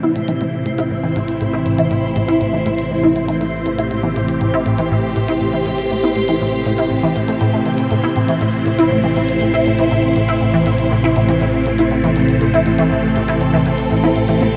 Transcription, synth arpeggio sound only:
0.03 E4
0.16 A2
0.28 E3
0.41 A2
0.66 A2
0.79 E4
0.91 A2
1.04 E3
1.16 A2
1.41 A2
1.53 E4
1.66 A2
1.79 E3
1.91 A2
2.16 A2
2.28 E4
2.41 A2
2.53 E3
2.66 A2
2.91 A2
3.03 E4
3.16 A2
3.28 E3
3.41 A2
3.66 A2
3.79 E4
3.91 A2
4.03 E3
4.16 A2
4.41 A2
4.54 E4
4.66 A2
4.79 E3
4.91 A2
5.16 A2
5.28 E4
5.41 A2
5.53 E3
5.66 A2
5.91 A2
6.04 E4
6.16 A2
6.29 E3
6.41 A2
6.66 A2
6.79 E4
6.91 A2
7.03 E3
7.16 A2
7.28 A3
7.41 A2
7.53 A3
7.66 E3
7.91 A2
8.04 E4
8.16 A2
8.29 E3
8.41 A2
8.66 A2
8.79 E4
8.91 A2
9.04 E3
9.16 A2
9.41 A2
9.54 E4
9.67 A2
9.79 E3
9.91 A2
10.16 A2
10.29 E4
10.41 A2
10.54 E3
10.66 A2
10.91 A2
11.04 E4
11.16 A2
11.29 E3
11.41 A2
11.66 A2
11.79 E4
11.91 A2
12.04 E3
12.16 A2
12.41 A2
12.54 E4
12.66 A2
12.79 E3
12.91 A2
13.16 A2
13.29 E4
13.41 A2
13.54 E3
13.66 A2
13.91 A2
14.04 E4
14.16 A2
14.29 E3
14.42 A2

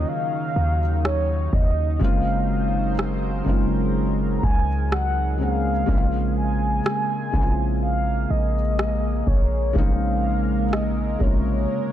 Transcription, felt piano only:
Already playing: D#3 F#3 A#3 C#4 F4
1.99 C#3 G#3 A#3 C4
2.04 F4
3.44 C#3 G#3 A#3 C4
3.49 F4
5.38 C#3 G#3 A#3 C4
5.42 G#4
5.86 C#3 G#3 A#3 C4
5.91 E4
5.97 F4
7.31 C#3 G#3 A#3 C4
7.36 E4
7.43 F4
9.73 C#3 G#3 A#3 C4
9.78 D#4
11.19 C3 C#3 G#3 A#3
11.23 F4

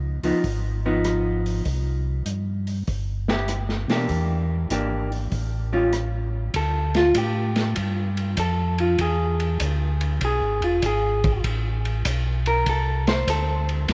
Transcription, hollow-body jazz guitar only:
0.24 F3 B3 D#4
0.86 F3 B3 D#4
3.29 B3 E4 G4
3.90 E3 A#3 D4 G4
4.71 E3 A#3 D4 G4
5.73 G3 C#4 F4
6.56 A4
6.97 F4
7.18 G4
8.40 A4
8.80 F4
9.01 G#4
10.25 G#4
10.64 F4
10.86 G#4
12.47 A#4
12.69 A4
13.09 C5
13.30 A4

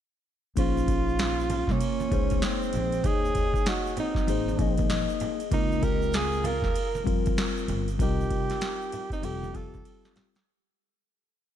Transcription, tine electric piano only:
0.56 A#3 D#4 G#4 C5
2.09 A#3 D#4 G#4 C5
3.03 A#3 D#4 G#4 C#5
4.27 A#3 D#4 G#4 C5
4.57 A#3 D#4 G#4 D#5
4.90 D#5
5.51 G#3 C4 F4 A#4
7.04 G3 C4 F4 A#4
7.98 G3 C4 F4 A#4
9.22 G3 C4 F4 A4
9.52 G3 C4 F4 G4

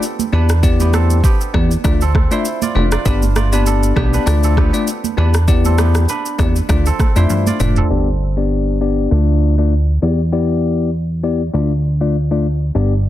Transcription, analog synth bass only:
0.33 E2
1.54 E2
1.85 D2
2.75 F1
3.06 G1
3.97 B1
4.27 D2
5.18 E2
6.39 E2
6.69 D2
7.16 F2
7.30 G2
7.60 F1
7.90 G1
9.12 D2
10.03 E2
11.54 D2
12.75 G1

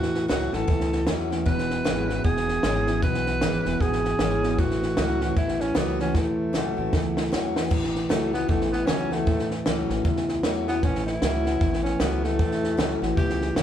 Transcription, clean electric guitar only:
Already playing: A2 E3
0.30 A2 F#3
0.52 A2 E3
0.67 A2 E3
1.07 A2 F#3
1.30 A2 E3
1.45 E2 B2
1.84 E2 C#3
2.08 E2 B2
2.24 E2 B2
2.62 E2 C#3
2.87 E2 B2
3.03 E2 B2
3.42 E2 C#3
3.65 E2 B2
3.80 E2 B2
4.20 E2 C#3
4.43 E2 B2
4.58 A2 E3
4.97 A2 F#3
5.21 A2 E3
5.36 A2 E3
5.76 A2 F#3
5.99 A2 E3
6.14 A2 E3
6.53 A2 F#3
6.78 A2 E3
6.93 A2 E3
7.32 A2 F#3
7.56 A2 E3
7.71 A2 E3
8.09 A2 F#3
8.33 A2 E3
8.48 A2 E3
8.87 A2 F#3
9.11 A2 E3
9.26 A2 E3
9.66 A2 F#3
9.91 A2 E3
10.05 A2 E3
10.44 A2 F#3
10.68 A2 E3
10.83 A2 E3
11.21 A2 F#3
11.45 A2 E3
11.60 A2 E3
12.00 A2 F#3
12.23 A2 E3
12.39 A2 E3
12.77 A2 F#3
13.02 A2 E3
13.17 A2 E3
13.56 A2 F#3

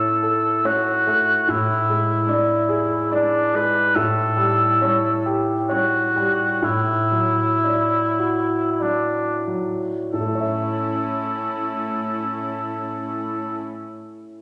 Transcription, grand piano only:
Already playing: A2 A3 C#5
0.23 A4
0.65 C#5
1.07 A3
1.48 A2
1.90 G#3
2.28 D5
2.69 G#4
3.11 D5
3.54 G#3
3.96 A2
4.36 G3
4.82 C#5
5.26 G4
5.69 C#5
6.16 G3
6.62 A2
7.12 F#3
7.64 D5
8.19 F#4
8.79 D5
9.47 F#3
10.13 A2
10.20 A3
10.27 E4
10.35 C#5
10.41 E5

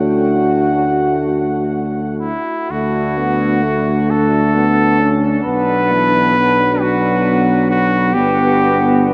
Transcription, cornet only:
Already playing: F#5
2.19 E4
2.71 F#4
4.10 A4
5.45 B4
6.81 F#4
7.71 F#4
8.14 G4

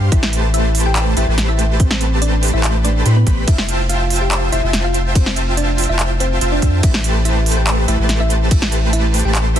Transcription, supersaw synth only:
0.12 A3 G4 B4 C5 A5
1.17 A3 G4 B4 C5 A5
1.28 A3 G4 B4 C5 A5
2.53 A3 G4 B4 C5 A5
3.05 A3 G4 B4 C5 B5
3.26 A3 G4 B4 C5 B5
3.47 F4 C5 E5 G5 A5
4.52 F4 C5 E5 G5 A5
4.63 F4 C5 E5 G5 A5
5.89 F4 C5 E5 G5 A5
6.41 F4 C5 E5 G5 A5
6.62 F4 C5 E5 G5 A5
6.83 A3 G4 B4 C5 A5
7.88 A3 G4 B4 C5 A5
7.99 A3 G4 B4 C5 A5
9.25 A3 G4 B4 C5 A5

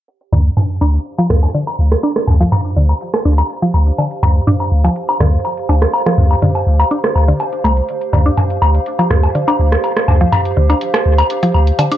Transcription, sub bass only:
0.33 D2
0.81 D2
1.30 D2
1.79 D2
2.28 D2
2.76 D2
3.25 D2
3.74 D2
4.23 D2
4.72 D2
5.20 D2
5.69 D2
6.18 D2
6.67 D2
7.16 D2
7.64 C2
8.13 D2
8.62 D2
9.11 D2
9.59 D2
10.08 D2
10.57 D2
11.06 D2
11.54 D2

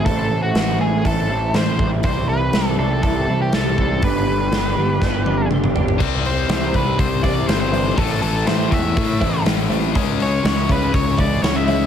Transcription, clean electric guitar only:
0.04 A2 E3 A3 C4 E4
0.30 A3 C4 E4
0.55 E3 A3 C4 E4
0.80 A2 E3 A3 C4 E4
1.04 E3 A3 C4 E4
1.28 A2 E3 A3 C4 E4
1.54 E3 A3 C4 E4
1.79 A3 C4 E4
2.03 C3 E3 G3 C4 E4
2.28 G3 C4 E4
2.53 E3 G3 C4 E4
2.78 C3 E3 G3 C4 E4
3.03 E3 G3 C4 E4
3.28 C3 E3 G3 C4 E4
3.52 E3 G3 C4 E4
3.77 G3 C4 E4
4.02 G2 D3 G3 B3 D4 G4
4.27 G3 B3 D4 G4
4.51 G3 B3 D4 G4
4.76 G2 D3 G3 B3 D4 G4
5.00 G3 B3 D4 G4
5.25 G2 D3 G3 B3 D4 G4
5.50 G3 B3 D4 G4
5.75 G3 B3 D4 G4
6.49 E3 G3 C4 E4
7.23 E3 G3 C4 E4
7.72 E3 G3 C4 E4
8.47 E3 A3 C4 E4
9.20 E3 A3 C4 E4
9.69 E3 A3 C4 E4
10.44 E3 G#3 C#4 E4
11.18 E3 G#3 C#4 E4
11.67 E3 G#3 C#4 E4

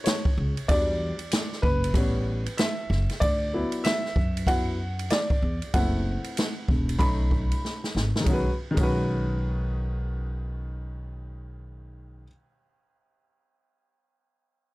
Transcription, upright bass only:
0.37 C#2
0.69 E2
1.63 F#1
1.94 A1
2.90 F#1
3.22 D2
4.16 F#2
5.42 E2
5.74 F#1
6.69 E1
6.99 B1
7.95 G#1
8.26 B1
8.77 B1

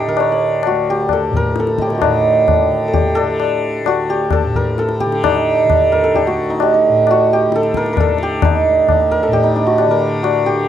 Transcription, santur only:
Already playing: D#4 G4 A4
0.08 A#4
0.20 C#5
0.32 D5
0.67 F#4
0.90 G4
1.13 A4
1.36 A#4
1.60 A4
1.79 G4 D5 D#5
1.86 A#4 C#5
1.92 G4 A4
1.97 F#4
2.03 D#4
2.88 A4
2.93 G4
3.15 A4
3.87 F#4
4.10 G4
4.32 A4
4.56 A#4
4.79 A4
5.00 G4
5.24 D#4
5.92 A#4
6.04 A4
6.15 G4
6.27 F#4
6.50 D#4
6.62 G4
6.74 D#4
7.11 F#4
7.33 G4
7.56 A4
7.77 A#4
7.93 A#4
8.00 A4
8.23 G4
8.45 D#4
9.11 A#4
9.23 A4
9.33 G4
9.44 D#4
9.56 D4
9.67 F#4
9.79 G4
9.91 A#4
10.23 F#4
10.46 G4

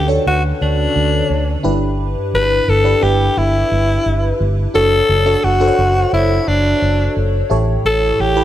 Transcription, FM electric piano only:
Already playing: D3 C#4 D4 F#4 A4 B4
0.08 D4 F#4 A4 C#5
1.63 G2 D4 E4 G4 B4
2.84 D4 E4 G4 B4
3.01 D4 E4 G4 B4
4.74 D4 F#4 A4 C#5
5.26 D4 F#4 A4 C#5
5.60 D4 F#4 A4 C5
5.68 C#5
7.50 A2 E4 G4 A4 C#5
8.36 E4 G4 A4 B4

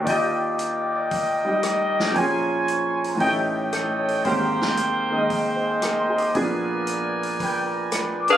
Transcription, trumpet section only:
0.07 A#4 D5 D#5 G5
0.93 D5
2.15 A#4 C5 C#5 G#5
2.68 C#6
2.86 C6
3.02 A#5
3.19 A4 C#5 D#5 G5
4.25 A#4 C5 G5
5.13 A#4 D#5
5.64 G#5
5.82 A#5
5.99 C6
6.17 D6
6.34 A#4 B4 D5 G#5
7.40 B4 G5
7.66 A#5
7.92 B5
8.18 D6

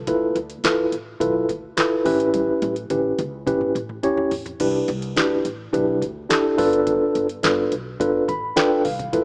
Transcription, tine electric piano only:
0.08 E4 F4 A4 B4
0.64 E4 F4 A4 B4
1.20 E4 F4 A4 B4
1.77 E4 F4 A4 B4
2.05 C#4 E4 G4 B4
2.90 C#4 E4 G4 B4
3.47 C#4 E4 G4 B4
4.03 C#4 E4 G4 C#5
4.60 D4 E4 G4 B4
5.16 D4 E4 G4 B4
5.73 D4 E4 G4 B4
6.29 D4 E4 G4 A4
6.58 D4 F4 A4 B4
7.43 D4 F4 A4 B4
8.00 D4 F4 A4 B4
8.29 B5
8.56 D4 F4 A4 B4 G5
8.85 F5
9.13 E4 F4 A4 B4

